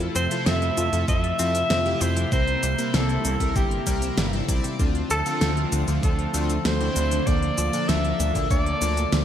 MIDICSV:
0, 0, Header, 1, 7, 480
1, 0, Start_track
1, 0, Key_signature, -1, "minor"
1, 0, Tempo, 618557
1, 1801, Time_signature, 4, 2, 24, 8
1, 7176, End_track
2, 0, Start_track
2, 0, Title_t, "Tenor saxophone"
2, 0, Program_c, 0, 66
2, 121, Note_on_c, 0, 72, 107
2, 360, Note_on_c, 0, 76, 119
2, 371, Note_off_c, 0, 72, 0
2, 840, Note_off_c, 0, 76, 0
2, 844, Note_on_c, 0, 76, 127
2, 1565, Note_on_c, 0, 72, 100
2, 1576, Note_off_c, 0, 76, 0
2, 1800, Note_off_c, 0, 72, 0
2, 1804, Note_on_c, 0, 72, 115
2, 2284, Note_on_c, 0, 69, 100
2, 2296, Note_off_c, 0, 72, 0
2, 2760, Note_off_c, 0, 69, 0
2, 2765, Note_on_c, 0, 67, 93
2, 3452, Note_off_c, 0, 67, 0
2, 3964, Note_on_c, 0, 69, 126
2, 4411, Note_off_c, 0, 69, 0
2, 4682, Note_on_c, 0, 69, 93
2, 5161, Note_on_c, 0, 72, 105
2, 5173, Note_off_c, 0, 69, 0
2, 5640, Note_on_c, 0, 74, 113
2, 5651, Note_off_c, 0, 72, 0
2, 6119, Note_on_c, 0, 76, 117
2, 6130, Note_off_c, 0, 74, 0
2, 6597, Note_off_c, 0, 76, 0
2, 6602, Note_on_c, 0, 74, 111
2, 7176, Note_off_c, 0, 74, 0
2, 7176, End_track
3, 0, Start_track
3, 0, Title_t, "Analog polysynth"
3, 0, Program_c, 1, 90
3, 0, Note_on_c, 1, 64, 80
3, 0, Note_on_c, 1, 65, 69
3, 0, Note_on_c, 1, 69, 87
3, 110, Note_off_c, 1, 64, 0
3, 110, Note_off_c, 1, 65, 0
3, 110, Note_off_c, 1, 69, 0
3, 241, Note_on_c, 1, 64, 97
3, 241, Note_on_c, 1, 65, 90
3, 241, Note_on_c, 1, 69, 109
3, 692, Note_off_c, 1, 64, 0
3, 692, Note_off_c, 1, 65, 0
3, 692, Note_off_c, 1, 69, 0
3, 721, Note_on_c, 1, 64, 74
3, 721, Note_on_c, 1, 65, 71
3, 721, Note_on_c, 1, 69, 85
3, 1052, Note_off_c, 1, 64, 0
3, 1052, Note_off_c, 1, 65, 0
3, 1052, Note_off_c, 1, 69, 0
3, 1081, Note_on_c, 1, 65, 91
3, 1081, Note_on_c, 1, 69, 108
3, 1082, Note_on_c, 1, 64, 97
3, 1224, Note_off_c, 1, 64, 0
3, 1224, Note_off_c, 1, 65, 0
3, 1224, Note_off_c, 1, 69, 0
3, 1442, Note_on_c, 1, 64, 97
3, 1442, Note_on_c, 1, 65, 89
3, 1442, Note_on_c, 1, 67, 108
3, 1773, Note_off_c, 1, 64, 0
3, 1773, Note_off_c, 1, 65, 0
3, 1773, Note_off_c, 1, 67, 0
3, 1801, Note_on_c, 1, 60, 77
3, 1802, Note_on_c, 1, 64, 71
3, 1802, Note_on_c, 1, 70, 89
3, 2030, Note_off_c, 1, 60, 0
3, 2030, Note_off_c, 1, 64, 0
3, 2030, Note_off_c, 1, 70, 0
3, 2160, Note_on_c, 1, 58, 108
3, 2160, Note_on_c, 1, 64, 86
3, 2161, Note_on_c, 1, 60, 99
3, 2612, Note_off_c, 1, 58, 0
3, 2612, Note_off_c, 1, 60, 0
3, 2612, Note_off_c, 1, 64, 0
3, 2642, Note_on_c, 1, 60, 75
3, 2642, Note_on_c, 1, 64, 70
3, 2642, Note_on_c, 1, 70, 84
3, 2973, Note_off_c, 1, 60, 0
3, 2973, Note_off_c, 1, 64, 0
3, 2973, Note_off_c, 1, 70, 0
3, 3002, Note_on_c, 1, 60, 84
3, 3002, Note_on_c, 1, 64, 78
3, 3002, Note_on_c, 1, 70, 98
3, 3332, Note_off_c, 1, 60, 0
3, 3332, Note_off_c, 1, 70, 0
3, 3333, Note_off_c, 1, 64, 0
3, 3361, Note_on_c, 1, 60, 77
3, 3361, Note_on_c, 1, 64, 68
3, 3361, Note_on_c, 1, 69, 83
3, 3452, Note_off_c, 1, 60, 0
3, 3452, Note_off_c, 1, 64, 0
3, 3452, Note_off_c, 1, 69, 0
3, 3480, Note_on_c, 1, 74, 96
3, 3481, Note_on_c, 1, 60, 88
3, 3481, Note_on_c, 1, 64, 78
3, 3692, Note_off_c, 1, 60, 0
3, 3692, Note_off_c, 1, 64, 0
3, 3692, Note_off_c, 1, 74, 0
3, 3721, Note_on_c, 1, 60, 77
3, 3721, Note_on_c, 1, 65, 84
3, 3722, Note_on_c, 1, 62, 68
3, 3950, Note_off_c, 1, 60, 0
3, 3950, Note_off_c, 1, 62, 0
3, 3950, Note_off_c, 1, 65, 0
3, 4082, Note_on_c, 1, 60, 99
3, 4082, Note_on_c, 1, 62, 92
3, 4082, Note_on_c, 1, 65, 105
3, 4533, Note_off_c, 1, 60, 0
3, 4533, Note_off_c, 1, 62, 0
3, 4533, Note_off_c, 1, 65, 0
3, 4562, Note_on_c, 1, 60, 76
3, 4562, Note_on_c, 1, 62, 68
3, 4562, Note_on_c, 1, 65, 86
3, 4892, Note_off_c, 1, 60, 0
3, 4892, Note_off_c, 1, 62, 0
3, 4893, Note_off_c, 1, 65, 0
3, 4922, Note_on_c, 1, 60, 92
3, 4922, Note_on_c, 1, 62, 83
3, 4922, Note_on_c, 1, 65, 104
3, 5064, Note_off_c, 1, 62, 0
3, 5065, Note_off_c, 1, 60, 0
3, 5065, Note_off_c, 1, 65, 0
3, 5281, Note_on_c, 1, 60, 101
3, 5281, Note_on_c, 1, 62, 88
3, 5281, Note_on_c, 1, 64, 106
3, 5612, Note_off_c, 1, 60, 0
3, 5612, Note_off_c, 1, 62, 0
3, 5612, Note_off_c, 1, 64, 0
3, 5641, Note_on_c, 1, 58, 76
3, 5641, Note_on_c, 1, 62, 69
3, 5641, Note_on_c, 1, 69, 83
3, 5870, Note_off_c, 1, 58, 0
3, 5870, Note_off_c, 1, 62, 0
3, 5870, Note_off_c, 1, 69, 0
3, 6001, Note_on_c, 1, 58, 95
3, 6001, Note_on_c, 1, 62, 91
3, 6001, Note_on_c, 1, 69, 104
3, 6452, Note_off_c, 1, 58, 0
3, 6452, Note_off_c, 1, 62, 0
3, 6452, Note_off_c, 1, 69, 0
3, 6480, Note_on_c, 1, 58, 79
3, 6481, Note_on_c, 1, 62, 71
3, 6481, Note_on_c, 1, 69, 84
3, 6812, Note_off_c, 1, 58, 0
3, 6812, Note_off_c, 1, 62, 0
3, 6812, Note_off_c, 1, 69, 0
3, 6841, Note_on_c, 1, 58, 93
3, 6841, Note_on_c, 1, 62, 87
3, 6841, Note_on_c, 1, 69, 109
3, 6984, Note_off_c, 1, 58, 0
3, 6984, Note_off_c, 1, 62, 0
3, 6984, Note_off_c, 1, 69, 0
3, 7176, End_track
4, 0, Start_track
4, 0, Title_t, "Analog synth pad"
4, 0, Program_c, 2, 89
4, 0, Note_on_c, 2, 48, 84
4, 0, Note_on_c, 2, 53, 78
4, 0, Note_on_c, 2, 57, 78
4, 0, Note_on_c, 2, 76, 89
4, 1782, Note_off_c, 2, 53, 0
4, 1782, Note_off_c, 2, 57, 0
4, 1802, Note_on_c, 2, 55, 80
4, 1802, Note_on_c, 2, 58, 75
4, 3690, Note_off_c, 2, 48, 0
4, 3690, Note_off_c, 2, 76, 0
4, 3702, Note_off_c, 2, 55, 0
4, 3702, Note_off_c, 2, 58, 0
4, 3723, Note_on_c, 2, 50, 84
4, 3723, Note_on_c, 2, 57, 77
4, 3724, Note_on_c, 2, 60, 78
4, 3725, Note_on_c, 2, 53, 94
4, 5623, Note_off_c, 2, 57, 0
4, 5623, Note_off_c, 2, 60, 0
4, 5641, Note_on_c, 2, 69, 76
4, 5642, Note_on_c, 2, 58, 77
4, 7176, Note_off_c, 2, 50, 0
4, 7176, Note_off_c, 2, 53, 0
4, 7176, Note_off_c, 2, 58, 0
4, 7176, Note_off_c, 2, 69, 0
4, 7176, End_track
5, 0, Start_track
5, 0, Title_t, "Clean electric guitar"
5, 0, Program_c, 3, 27
5, 120, Note_on_c, 3, 60, 108
5, 210, Note_off_c, 3, 60, 0
5, 239, Note_on_c, 3, 53, 80
5, 276, Note_off_c, 3, 53, 0
5, 359, Note_on_c, 3, 60, 87
5, 420, Note_off_c, 3, 60, 0
5, 601, Note_on_c, 3, 53, 77
5, 637, Note_off_c, 3, 53, 0
5, 720, Note_on_c, 3, 53, 75
5, 811, Note_off_c, 3, 53, 0
5, 840, Note_on_c, 3, 53, 84
5, 900, Note_off_c, 3, 53, 0
5, 1082, Note_on_c, 3, 60, 106
5, 1171, Note_off_c, 3, 60, 0
5, 1201, Note_on_c, 3, 53, 74
5, 1237, Note_off_c, 3, 53, 0
5, 1321, Note_on_c, 3, 60, 82
5, 1381, Note_off_c, 3, 60, 0
5, 1561, Note_on_c, 3, 53, 73
5, 1597, Note_off_c, 3, 53, 0
5, 1682, Note_on_c, 3, 53, 78
5, 1771, Note_off_c, 3, 53, 0
5, 1801, Note_on_c, 3, 48, 84
5, 1861, Note_off_c, 3, 48, 0
5, 2040, Note_on_c, 3, 55, 101
5, 2130, Note_off_c, 3, 55, 0
5, 2162, Note_on_c, 3, 48, 76
5, 2197, Note_off_c, 3, 48, 0
5, 2281, Note_on_c, 3, 55, 85
5, 2341, Note_off_c, 3, 55, 0
5, 2521, Note_on_c, 3, 48, 74
5, 2557, Note_off_c, 3, 48, 0
5, 2641, Note_on_c, 3, 48, 77
5, 2731, Note_off_c, 3, 48, 0
5, 2759, Note_on_c, 3, 48, 81
5, 2820, Note_off_c, 3, 48, 0
5, 3000, Note_on_c, 3, 55, 102
5, 3091, Note_off_c, 3, 55, 0
5, 3119, Note_on_c, 3, 48, 73
5, 3156, Note_off_c, 3, 48, 0
5, 3239, Note_on_c, 3, 55, 77
5, 3300, Note_off_c, 3, 55, 0
5, 3479, Note_on_c, 3, 48, 74
5, 3516, Note_off_c, 3, 48, 0
5, 3600, Note_on_c, 3, 48, 80
5, 3690, Note_off_c, 3, 48, 0
5, 3719, Note_on_c, 3, 50, 84
5, 3780, Note_off_c, 3, 50, 0
5, 3961, Note_on_c, 3, 57, 108
5, 4051, Note_off_c, 3, 57, 0
5, 4081, Note_on_c, 3, 50, 78
5, 4117, Note_off_c, 3, 50, 0
5, 4201, Note_on_c, 3, 57, 86
5, 4261, Note_off_c, 3, 57, 0
5, 4442, Note_on_c, 3, 50, 71
5, 4477, Note_off_c, 3, 50, 0
5, 4563, Note_on_c, 3, 50, 76
5, 4652, Note_off_c, 3, 50, 0
5, 4682, Note_on_c, 3, 50, 83
5, 4741, Note_off_c, 3, 50, 0
5, 4920, Note_on_c, 3, 57, 105
5, 5010, Note_off_c, 3, 57, 0
5, 5041, Note_on_c, 3, 50, 74
5, 5077, Note_off_c, 3, 50, 0
5, 5160, Note_on_c, 3, 57, 81
5, 5221, Note_off_c, 3, 57, 0
5, 5401, Note_on_c, 3, 50, 74
5, 5437, Note_off_c, 3, 50, 0
5, 5521, Note_on_c, 3, 50, 80
5, 5611, Note_off_c, 3, 50, 0
5, 5641, Note_on_c, 3, 46, 86
5, 5701, Note_off_c, 3, 46, 0
5, 5880, Note_on_c, 3, 53, 104
5, 5971, Note_off_c, 3, 53, 0
5, 6002, Note_on_c, 3, 46, 76
5, 6037, Note_off_c, 3, 46, 0
5, 6121, Note_on_c, 3, 53, 90
5, 6181, Note_off_c, 3, 53, 0
5, 6361, Note_on_c, 3, 46, 74
5, 6397, Note_off_c, 3, 46, 0
5, 6482, Note_on_c, 3, 46, 78
5, 6571, Note_off_c, 3, 46, 0
5, 6601, Note_on_c, 3, 46, 86
5, 6661, Note_off_c, 3, 46, 0
5, 6842, Note_on_c, 3, 53, 101
5, 6931, Note_off_c, 3, 53, 0
5, 6961, Note_on_c, 3, 46, 77
5, 6997, Note_off_c, 3, 46, 0
5, 7081, Note_on_c, 3, 53, 80
5, 7141, Note_off_c, 3, 53, 0
5, 7176, End_track
6, 0, Start_track
6, 0, Title_t, "Analog synth bass"
6, 0, Program_c, 4, 38
6, 121, Note_on_c, 4, 41, 77
6, 215, Note_off_c, 4, 41, 0
6, 362, Note_on_c, 4, 41, 83
6, 550, Note_off_c, 4, 41, 0
6, 602, Note_on_c, 4, 41, 107
6, 696, Note_off_c, 4, 41, 0
6, 721, Note_on_c, 4, 41, 100
6, 816, Note_off_c, 4, 41, 0
6, 841, Note_on_c, 4, 41, 95
6, 1030, Note_off_c, 4, 41, 0
6, 1081, Note_on_c, 4, 41, 99
6, 1270, Note_off_c, 4, 41, 0
6, 1321, Note_on_c, 4, 41, 99
6, 1510, Note_off_c, 4, 41, 0
6, 1561, Note_on_c, 4, 41, 93
6, 1750, Note_off_c, 4, 41, 0
6, 1800, Note_on_c, 4, 36, 99
6, 1990, Note_off_c, 4, 36, 0
6, 2041, Note_on_c, 4, 36, 78
6, 2135, Note_off_c, 4, 36, 0
6, 2280, Note_on_c, 4, 36, 83
6, 2470, Note_off_c, 4, 36, 0
6, 2521, Note_on_c, 4, 36, 98
6, 2615, Note_off_c, 4, 36, 0
6, 2640, Note_on_c, 4, 36, 102
6, 2735, Note_off_c, 4, 36, 0
6, 2761, Note_on_c, 4, 31, 83
6, 2950, Note_off_c, 4, 31, 0
6, 3001, Note_on_c, 4, 36, 99
6, 3190, Note_off_c, 4, 36, 0
6, 3241, Note_on_c, 4, 31, 78
6, 3430, Note_off_c, 4, 31, 0
6, 3481, Note_on_c, 4, 36, 97
6, 3576, Note_off_c, 4, 36, 0
6, 3721, Note_on_c, 4, 38, 100
6, 3910, Note_off_c, 4, 38, 0
6, 3961, Note_on_c, 4, 38, 78
6, 4055, Note_off_c, 4, 38, 0
6, 4201, Note_on_c, 4, 38, 82
6, 4390, Note_off_c, 4, 38, 0
6, 4441, Note_on_c, 4, 38, 102
6, 4536, Note_off_c, 4, 38, 0
6, 4562, Note_on_c, 4, 38, 103
6, 4656, Note_off_c, 4, 38, 0
6, 4681, Note_on_c, 4, 38, 91
6, 4870, Note_off_c, 4, 38, 0
6, 4922, Note_on_c, 4, 38, 97
6, 5111, Note_off_c, 4, 38, 0
6, 5163, Note_on_c, 4, 38, 95
6, 5351, Note_off_c, 4, 38, 0
6, 5402, Note_on_c, 4, 38, 96
6, 5591, Note_off_c, 4, 38, 0
6, 5640, Note_on_c, 4, 38, 101
6, 5830, Note_off_c, 4, 38, 0
6, 5883, Note_on_c, 4, 38, 81
6, 5976, Note_off_c, 4, 38, 0
6, 6122, Note_on_c, 4, 38, 82
6, 6310, Note_off_c, 4, 38, 0
6, 6361, Note_on_c, 4, 38, 102
6, 6456, Note_off_c, 4, 38, 0
6, 6480, Note_on_c, 4, 38, 103
6, 6575, Note_off_c, 4, 38, 0
6, 6600, Note_on_c, 4, 38, 97
6, 6789, Note_off_c, 4, 38, 0
6, 6841, Note_on_c, 4, 38, 98
6, 7030, Note_off_c, 4, 38, 0
6, 7081, Note_on_c, 4, 38, 98
6, 7176, Note_off_c, 4, 38, 0
6, 7176, End_track
7, 0, Start_track
7, 0, Title_t, "Drums"
7, 1, Note_on_c, 9, 42, 28
7, 78, Note_off_c, 9, 42, 0
7, 121, Note_on_c, 9, 42, 96
7, 121, Note_on_c, 9, 82, 68
7, 199, Note_off_c, 9, 42, 0
7, 199, Note_off_c, 9, 82, 0
7, 241, Note_on_c, 9, 42, 54
7, 241, Note_on_c, 9, 82, 28
7, 319, Note_off_c, 9, 42, 0
7, 319, Note_off_c, 9, 82, 0
7, 360, Note_on_c, 9, 38, 123
7, 360, Note_on_c, 9, 42, 52
7, 360, Note_on_c, 9, 82, 38
7, 438, Note_off_c, 9, 38, 0
7, 438, Note_off_c, 9, 42, 0
7, 438, Note_off_c, 9, 82, 0
7, 480, Note_on_c, 9, 42, 27
7, 558, Note_off_c, 9, 42, 0
7, 601, Note_on_c, 9, 42, 93
7, 601, Note_on_c, 9, 82, 68
7, 679, Note_off_c, 9, 42, 0
7, 679, Note_off_c, 9, 82, 0
7, 721, Note_on_c, 9, 42, 55
7, 721, Note_on_c, 9, 82, 29
7, 799, Note_off_c, 9, 42, 0
7, 799, Note_off_c, 9, 82, 0
7, 840, Note_on_c, 9, 36, 127
7, 840, Note_on_c, 9, 42, 57
7, 840, Note_on_c, 9, 82, 41
7, 918, Note_off_c, 9, 36, 0
7, 918, Note_off_c, 9, 42, 0
7, 918, Note_off_c, 9, 82, 0
7, 961, Note_on_c, 9, 42, 28
7, 1038, Note_off_c, 9, 42, 0
7, 1080, Note_on_c, 9, 42, 95
7, 1080, Note_on_c, 9, 82, 70
7, 1157, Note_off_c, 9, 42, 0
7, 1157, Note_off_c, 9, 82, 0
7, 1201, Note_on_c, 9, 42, 53
7, 1201, Note_on_c, 9, 82, 29
7, 1278, Note_off_c, 9, 42, 0
7, 1278, Note_off_c, 9, 82, 0
7, 1321, Note_on_c, 9, 38, 126
7, 1321, Note_on_c, 9, 42, 54
7, 1321, Note_on_c, 9, 82, 38
7, 1398, Note_off_c, 9, 38, 0
7, 1398, Note_off_c, 9, 42, 0
7, 1398, Note_off_c, 9, 82, 0
7, 1441, Note_on_c, 9, 42, 28
7, 1518, Note_off_c, 9, 42, 0
7, 1561, Note_on_c, 9, 42, 95
7, 1561, Note_on_c, 9, 82, 68
7, 1639, Note_off_c, 9, 42, 0
7, 1639, Note_off_c, 9, 82, 0
7, 1680, Note_on_c, 9, 42, 56
7, 1680, Note_on_c, 9, 82, 30
7, 1758, Note_off_c, 9, 42, 0
7, 1758, Note_off_c, 9, 82, 0
7, 1801, Note_on_c, 9, 36, 125
7, 1801, Note_on_c, 9, 42, 53
7, 1801, Note_on_c, 9, 82, 37
7, 1878, Note_off_c, 9, 36, 0
7, 1879, Note_off_c, 9, 42, 0
7, 1879, Note_off_c, 9, 82, 0
7, 1920, Note_on_c, 9, 42, 26
7, 1998, Note_off_c, 9, 42, 0
7, 2041, Note_on_c, 9, 42, 93
7, 2041, Note_on_c, 9, 82, 69
7, 2118, Note_off_c, 9, 42, 0
7, 2118, Note_off_c, 9, 82, 0
7, 2161, Note_on_c, 9, 42, 53
7, 2161, Note_on_c, 9, 82, 27
7, 2239, Note_off_c, 9, 42, 0
7, 2239, Note_off_c, 9, 82, 0
7, 2281, Note_on_c, 9, 38, 127
7, 2281, Note_on_c, 9, 42, 50
7, 2281, Note_on_c, 9, 82, 37
7, 2359, Note_off_c, 9, 38, 0
7, 2359, Note_off_c, 9, 42, 0
7, 2359, Note_off_c, 9, 82, 0
7, 2401, Note_on_c, 9, 42, 26
7, 2479, Note_off_c, 9, 42, 0
7, 2520, Note_on_c, 9, 42, 93
7, 2520, Note_on_c, 9, 82, 66
7, 2598, Note_off_c, 9, 42, 0
7, 2598, Note_off_c, 9, 82, 0
7, 2640, Note_on_c, 9, 36, 61
7, 2641, Note_on_c, 9, 42, 54
7, 2641, Note_on_c, 9, 82, 30
7, 2718, Note_off_c, 9, 36, 0
7, 2719, Note_off_c, 9, 42, 0
7, 2719, Note_off_c, 9, 82, 0
7, 2760, Note_on_c, 9, 36, 127
7, 2761, Note_on_c, 9, 42, 55
7, 2761, Note_on_c, 9, 82, 39
7, 2838, Note_off_c, 9, 36, 0
7, 2839, Note_off_c, 9, 42, 0
7, 2839, Note_off_c, 9, 82, 0
7, 2881, Note_on_c, 9, 42, 27
7, 2958, Note_off_c, 9, 42, 0
7, 3000, Note_on_c, 9, 42, 96
7, 3000, Note_on_c, 9, 82, 70
7, 3001, Note_on_c, 9, 36, 59
7, 3078, Note_off_c, 9, 36, 0
7, 3078, Note_off_c, 9, 42, 0
7, 3078, Note_off_c, 9, 82, 0
7, 3120, Note_on_c, 9, 42, 50
7, 3120, Note_on_c, 9, 82, 27
7, 3197, Note_off_c, 9, 42, 0
7, 3197, Note_off_c, 9, 82, 0
7, 3241, Note_on_c, 9, 38, 127
7, 3241, Note_on_c, 9, 42, 52
7, 3241, Note_on_c, 9, 82, 37
7, 3318, Note_off_c, 9, 38, 0
7, 3318, Note_off_c, 9, 42, 0
7, 3318, Note_off_c, 9, 82, 0
7, 3361, Note_on_c, 9, 42, 27
7, 3439, Note_off_c, 9, 42, 0
7, 3481, Note_on_c, 9, 36, 117
7, 3482, Note_on_c, 9, 42, 97
7, 3482, Note_on_c, 9, 82, 68
7, 3559, Note_off_c, 9, 36, 0
7, 3560, Note_off_c, 9, 42, 0
7, 3560, Note_off_c, 9, 82, 0
7, 3602, Note_on_c, 9, 42, 57
7, 3602, Note_on_c, 9, 82, 29
7, 3679, Note_off_c, 9, 42, 0
7, 3679, Note_off_c, 9, 82, 0
7, 3721, Note_on_c, 9, 36, 121
7, 3722, Note_on_c, 9, 42, 50
7, 3722, Note_on_c, 9, 82, 36
7, 3799, Note_off_c, 9, 36, 0
7, 3799, Note_off_c, 9, 42, 0
7, 3799, Note_off_c, 9, 82, 0
7, 3841, Note_on_c, 9, 42, 26
7, 3918, Note_off_c, 9, 42, 0
7, 3961, Note_on_c, 9, 42, 92
7, 3961, Note_on_c, 9, 82, 68
7, 4039, Note_off_c, 9, 42, 0
7, 4039, Note_off_c, 9, 82, 0
7, 4081, Note_on_c, 9, 42, 49
7, 4081, Note_on_c, 9, 82, 29
7, 4159, Note_off_c, 9, 42, 0
7, 4159, Note_off_c, 9, 82, 0
7, 4201, Note_on_c, 9, 38, 120
7, 4201, Note_on_c, 9, 42, 49
7, 4201, Note_on_c, 9, 82, 37
7, 4278, Note_off_c, 9, 38, 0
7, 4278, Note_off_c, 9, 42, 0
7, 4278, Note_off_c, 9, 82, 0
7, 4322, Note_on_c, 9, 42, 26
7, 4399, Note_off_c, 9, 42, 0
7, 4441, Note_on_c, 9, 42, 90
7, 4441, Note_on_c, 9, 82, 67
7, 4519, Note_off_c, 9, 42, 0
7, 4519, Note_off_c, 9, 82, 0
7, 4561, Note_on_c, 9, 42, 51
7, 4561, Note_on_c, 9, 82, 29
7, 4638, Note_off_c, 9, 42, 0
7, 4638, Note_off_c, 9, 82, 0
7, 4681, Note_on_c, 9, 36, 120
7, 4681, Note_on_c, 9, 42, 54
7, 4681, Note_on_c, 9, 82, 41
7, 4759, Note_off_c, 9, 36, 0
7, 4759, Note_off_c, 9, 42, 0
7, 4759, Note_off_c, 9, 82, 0
7, 4801, Note_on_c, 9, 42, 25
7, 4879, Note_off_c, 9, 42, 0
7, 4921, Note_on_c, 9, 42, 91
7, 4921, Note_on_c, 9, 82, 67
7, 4999, Note_off_c, 9, 42, 0
7, 4999, Note_off_c, 9, 82, 0
7, 5041, Note_on_c, 9, 42, 50
7, 5041, Note_on_c, 9, 82, 28
7, 5118, Note_off_c, 9, 42, 0
7, 5118, Note_off_c, 9, 82, 0
7, 5161, Note_on_c, 9, 38, 117
7, 5161, Note_on_c, 9, 42, 53
7, 5161, Note_on_c, 9, 82, 39
7, 5239, Note_off_c, 9, 38, 0
7, 5239, Note_off_c, 9, 42, 0
7, 5239, Note_off_c, 9, 82, 0
7, 5281, Note_on_c, 9, 42, 25
7, 5358, Note_off_c, 9, 42, 0
7, 5401, Note_on_c, 9, 42, 90
7, 5401, Note_on_c, 9, 82, 67
7, 5478, Note_off_c, 9, 42, 0
7, 5478, Note_off_c, 9, 82, 0
7, 5521, Note_on_c, 9, 42, 55
7, 5521, Note_on_c, 9, 82, 30
7, 5598, Note_off_c, 9, 42, 0
7, 5598, Note_off_c, 9, 82, 0
7, 5641, Note_on_c, 9, 36, 110
7, 5641, Note_on_c, 9, 42, 52
7, 5641, Note_on_c, 9, 82, 39
7, 5718, Note_off_c, 9, 36, 0
7, 5719, Note_off_c, 9, 42, 0
7, 5719, Note_off_c, 9, 82, 0
7, 5762, Note_on_c, 9, 42, 25
7, 5839, Note_off_c, 9, 42, 0
7, 5881, Note_on_c, 9, 42, 90
7, 5881, Note_on_c, 9, 82, 73
7, 5958, Note_off_c, 9, 42, 0
7, 5958, Note_off_c, 9, 82, 0
7, 6001, Note_on_c, 9, 42, 51
7, 6001, Note_on_c, 9, 82, 28
7, 6078, Note_off_c, 9, 42, 0
7, 6078, Note_off_c, 9, 82, 0
7, 6122, Note_on_c, 9, 38, 115
7, 6122, Note_on_c, 9, 42, 51
7, 6122, Note_on_c, 9, 82, 41
7, 6200, Note_off_c, 9, 38, 0
7, 6200, Note_off_c, 9, 42, 0
7, 6200, Note_off_c, 9, 82, 0
7, 6243, Note_on_c, 9, 42, 25
7, 6321, Note_off_c, 9, 42, 0
7, 6363, Note_on_c, 9, 42, 90
7, 6363, Note_on_c, 9, 82, 69
7, 6441, Note_off_c, 9, 42, 0
7, 6441, Note_off_c, 9, 82, 0
7, 6480, Note_on_c, 9, 36, 59
7, 6482, Note_on_c, 9, 42, 51
7, 6482, Note_on_c, 9, 82, 29
7, 6558, Note_off_c, 9, 36, 0
7, 6560, Note_off_c, 9, 42, 0
7, 6560, Note_off_c, 9, 82, 0
7, 6600, Note_on_c, 9, 36, 118
7, 6602, Note_on_c, 9, 42, 53
7, 6602, Note_on_c, 9, 82, 40
7, 6678, Note_off_c, 9, 36, 0
7, 6680, Note_off_c, 9, 42, 0
7, 6680, Note_off_c, 9, 82, 0
7, 6723, Note_on_c, 9, 42, 25
7, 6801, Note_off_c, 9, 42, 0
7, 6841, Note_on_c, 9, 42, 89
7, 6841, Note_on_c, 9, 82, 72
7, 6919, Note_off_c, 9, 42, 0
7, 6919, Note_off_c, 9, 82, 0
7, 6962, Note_on_c, 9, 42, 47
7, 6962, Note_on_c, 9, 82, 29
7, 7040, Note_off_c, 9, 42, 0
7, 7040, Note_off_c, 9, 82, 0
7, 7081, Note_on_c, 9, 38, 114
7, 7081, Note_on_c, 9, 42, 51
7, 7081, Note_on_c, 9, 82, 39
7, 7159, Note_off_c, 9, 38, 0
7, 7159, Note_off_c, 9, 42, 0
7, 7159, Note_off_c, 9, 82, 0
7, 7176, End_track
0, 0, End_of_file